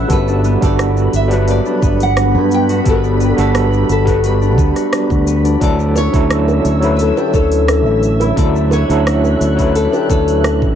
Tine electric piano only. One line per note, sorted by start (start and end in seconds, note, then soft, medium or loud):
0.00 0.12 D3 medium
0.00 0.12 F#3 medium
0.00 0.12 E4 medium
0.00 0.12 B4 loud
0.00 0.12 C#5 medium
0.08 0.57 G3 loud
0.08 0.57 B3 medium
0.08 0.57 D4 medium
0.08 0.58 F#4 medium
0.08 0.58 A4 loud
0.61 1.26 G3 medium
0.61 1.27 B3 medium
0.61 1.27 D4 medium
0.61 1.27 F#4 medium
0.61 1.27 A4 medium
1.28 2.82 F#3 medium
1.28 2.80 G3 medium
1.28 2.81 B3 medium
1.28 2.81 D4 medium
1.33 2.83 B4 loud
2.84 3.33 G3 loud
2.84 3.33 B3 medium
2.84 3.34 D4 medium
2.84 3.34 F#4 medium
2.84 3.34 A4 loud
3.37 4.02 G3 medium
3.37 4.02 B3 medium
3.37 4.03 D4 medium
3.37 4.03 F#4 medium
3.37 4.03 A4 medium
4.04 5.56 G3 medium
4.04 5.57 B3 medium
4.04 5.57 D4 medium
4.04 5.58 F#4 medium
4.10 5.59 B4 medium
5.60 6.09 F#3 loud
5.60 6.10 D4 medium
5.60 6.10 E4 medium
5.60 6.10 A4 loud
5.60 6.09 D5 medium
6.13 6.79 D3 medium
6.13 6.78 F#3 medium
6.13 6.79 E4 medium
6.13 6.79 A4 medium
6.13 6.78 C#5 medium
6.80 8.33 D3 medium
6.80 8.32 F#3 medium
6.80 8.33 C#5 medium
6.84 8.34 E4 medium
6.84 8.35 B4 medium
8.36 8.85 D3 medium
8.36 8.85 F#3 medium
8.36 8.86 E4 medium
8.36 8.86 A4 loud
8.36 8.85 D5 medium
8.88 9.54 D3 medium
8.88 9.54 F#3 medium
8.88 9.55 E4 medium
8.88 9.55 A4 medium
8.88 9.54 C#5 medium
9.56 10.75 D3 medium
9.56 10.75 F#3 medium
9.56 10.75 E4 medium
9.56 10.75 C#5 medium
9.61 10.75 B4 medium